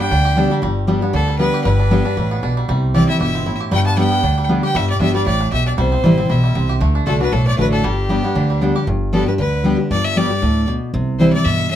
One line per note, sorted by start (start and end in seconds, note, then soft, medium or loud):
0.00 0.34 B3 medium
0.00 0.12 D4 medium
0.00 0.11 G4 medium
0.00 0.22 G4 medium
0.00 0.52 G5 loud
0.11 0.45 D2 medium
0.11 0.61 D3 loud
0.11 0.36 D4 medium
0.25 0.60 G4 medium
0.37 0.50 G3 medium
0.37 0.50 B3 medium
0.37 0.63 D4 medium
0.37 0.51 D4 loud
0.37 0.49 G4 loud
0.50 0.62 G3 medium
0.50 0.63 D4 medium
0.50 0.62 G4 medium
0.62 0.96 G1 medium
0.62 1.11 G2 medium
0.62 0.88 G3 medium
0.87 1.01 G3 medium
0.87 1.27 G3 medium
0.87 1.01 B3 medium
0.87 1.02 D4 medium
0.87 1.00 G4 medium
1.01 1.37 B3 medium
1.01 1.14 D4 medium
1.01 1.13 G4 medium
1.13 1.48 D2 medium
1.13 1.63 D3 medium
1.13 1.51 D4 medium
1.13 1.38 A4 loud
1.28 1.65 G3 medium
1.39 1.64 G3 medium
1.39 1.64 B3 medium
1.39 1.77 B3 medium
1.39 1.64 D4 medium
1.39 1.65 G4 medium
1.39 1.63 B4 loud
1.54 2.94 G4 medium
1.64 1.99 G1 loud
1.64 2.15 G2 medium
1.64 2.17 G3 medium
1.64 2.52 B4 loud
1.79 2.04 D4 medium
1.90 2.28 D3 medium
1.90 2.04 G3 medium
1.90 2.05 B3 medium
1.90 2.05 D4 medium
1.90 2.03 G4 loud
2.04 2.40 D4 medium
2.04 2.17 D4 soft
2.04 2.16 G4 medium
2.17 2.39 A1 medium
2.17 2.42 A2 medium
2.17 2.57 G3 medium
2.31 2.66 B3 medium
2.43 2.65 B1 medium
2.43 2.67 B2 medium
2.43 2.69 D4 medium
2.57 2.68 G3 medium
2.68 3.03 C2 medium
2.68 3.18 C3 medium
2.68 3.71 G3 medium
2.94 3.08 E3 medium
2.94 3.08 G3 loud
2.94 3.08 C4 medium
2.94 3.07 E4 medium
2.94 3.20 G4 medium
2.94 3.08 D5 loud
3.08 3.20 C4 soft
3.08 3.19 E4 medium
3.08 3.44 E4 medium
3.08 3.20 E5 medium
3.20 3.54 G1 medium
3.20 3.45 B2 medium
3.20 3.60 G4 medium
3.20 3.57 E5 medium
3.35 3.70 C4 medium
3.46 3.71 A2 medium
3.46 3.72 E4 medium
3.60 4.63 G4 medium
3.71 4.06 G1 medium
3.71 4.21 G2 medium
3.71 3.97 G3 medium
3.71 3.85 G5 loud
3.86 4.10 B3 medium
3.86 3.97 A5 loud
3.97 4.22 G3 medium
3.97 4.37 G3 medium
3.97 4.22 B3 medium
3.97 4.23 D4 medium
3.97 4.23 G4 medium
3.97 4.46 G5 loud
4.12 4.47 B3 medium
4.23 4.57 D2 medium
4.23 4.72 D3 medium
4.23 4.60 D4 medium
4.38 4.75 G3 medium
4.49 4.62 G3 medium
4.49 4.63 B3 medium
4.49 4.86 B3 medium
4.49 4.63 D4 medium
4.49 4.62 G4 medium
4.63 4.75 D4 soft
4.63 4.74 G4 medium
4.63 4.98 G4 medium
4.63 4.78 G5 loud
4.75 4.92 G1 medium
4.75 5.24 G2 medium
4.75 5.12 G3 medium
4.75 4.89 E5 loud
4.90 5.00 D5 medium
5.00 5.22 G1 medium
5.00 5.14 G3 medium
5.00 5.14 B3 medium
5.00 5.37 D4 medium
5.00 5.14 D4 medium
5.00 5.13 G4 medium
5.00 5.14 E5 loud
5.14 5.50 G3 medium
5.14 5.26 D4 medium
5.14 5.26 G4 medium
5.14 5.26 D5 medium
5.26 5.48 A1 medium
5.26 5.51 A2 medium
5.26 5.51 G4 medium
5.26 5.51 D5 medium
5.40 5.65 D4 medium
5.52 5.74 B1 medium
5.52 5.77 B2 medium
5.52 5.78 G4 medium
5.52 5.65 E5 loud
5.66 5.78 D4 medium
5.66 5.72 D5 medium
5.78 5.95 C2 loud
5.78 6.27 C3 medium
5.78 6.02 G3 medium
5.78 6.32 C5 medium
5.92 6.16 C4 medium
6.04 6.26 A1 medium
6.04 6.17 E3 medium
6.04 6.41 G3 medium
6.04 6.18 G3 medium
6.04 6.18 C4 medium
6.04 6.16 E4 medium
6.17 6.53 C4 medium
6.17 6.30 C4 medium
6.17 6.29 E4 medium
6.29 6.51 B1 medium
6.29 6.54 B2 medium
6.29 6.67 E4 medium
6.29 6.70 E5 medium
6.44 6.79 G3 medium
6.55 6.77 C2 medium
6.55 6.80 C3 medium
6.55 6.81 C4 medium
6.69 6.81 G4 medium
6.80 6.98 D2 loud
6.80 7.05 D3 medium
6.80 7.06 A3 medium
6.95 7.21 D4 medium
7.06 7.29 C2 medium
7.06 7.20 D3 medium
7.06 7.20 A3 medium
7.06 7.44 A3 medium
7.06 7.21 D4 loud
7.06 7.19 F#4 medium
7.06 7.20 A4 medium
7.20 7.33 D4 medium
7.20 7.32 F#4 medium
7.20 7.34 B4 medium
7.32 7.55 B1 medium
7.32 7.81 A2 medium
7.32 7.59 D4 medium
7.32 7.47 A4 loud
7.47 7.82 A3 medium
7.47 7.58 D5 medium
7.57 7.80 A1 medium
7.57 7.82 D3 medium
7.57 7.83 A3 medium
7.57 7.83 D4 medium
7.57 7.73 D4 medium
7.57 7.83 F#4 medium
7.57 7.72 B4 loud
7.72 8.35 D4 medium
7.72 7.86 A4 medium
7.84 8.18 G1 medium
7.84 8.33 G2 medium
7.84 8.09 G3 medium
7.84 8.62 G4 medium
8.09 8.23 G3 medium
8.09 8.47 G3 medium
8.09 8.23 B3 medium
8.09 8.24 D4 medium
8.09 8.22 G4 medium
8.23 8.59 B3 medium
8.23 8.36 D4 medium
8.23 8.35 G4 medium
8.35 8.70 D2 medium
8.35 8.85 D3 medium
8.35 8.73 D4 medium
8.50 8.85 G3 medium
8.61 8.75 G3 medium
8.61 8.87 B3 medium
8.61 8.75 B3 medium
8.61 8.75 D4 medium
8.61 8.74 G4 medium
8.75 8.88 D4 soft
8.75 8.87 G4 medium
8.87 9.21 G1 loud
8.87 9.37 G2 medium
9.13 9.26 G3 medium
9.13 9.27 B3 medium
9.13 9.27 D4 medium
9.13 9.25 G4 loud
9.13 9.26 A4 medium
9.26 9.39 D4 soft
9.26 9.38 G4 medium
9.26 9.33 B4 medium
9.38 9.73 D2 medium
9.38 9.88 D3 medium
9.38 9.76 B4 medium
9.64 9.78 G3 medium
9.64 9.78 B3 medium
9.64 9.79 D4 medium
9.64 9.77 G4 medium
9.78 9.91 D4 medium
9.78 9.90 G4 medium
9.91 10.25 G1 loud
9.91 10.40 G2 medium
9.91 10.06 D5 loud
10.05 10.18 E5 loud
10.16 10.30 G3 medium
10.16 10.30 B3 medium
10.16 10.30 D4 medium
10.16 10.29 G4 loud
10.16 10.68 D5 loud
10.31 10.43 D4 medium
10.31 10.42 G4 medium
10.42 10.76 D2 medium
10.42 10.67 A2 medium
10.68 10.93 B2 medium
10.94 11.28 C2 loud
10.94 11.43 C3 medium
11.19 11.33 E3 medium
11.19 11.33 G3 medium
11.19 11.34 C4 medium
11.19 11.32 E4 medium
11.19 11.32 C5 loud
11.33 11.46 C4 soft
11.33 11.45 E4 medium
11.33 11.46 D5 loud
11.44 11.76 G2 medium
11.44 11.70 B2 medium
11.44 11.70 E5 loud
11.71 11.76 A2 medium
11.71 11.76 E5 loud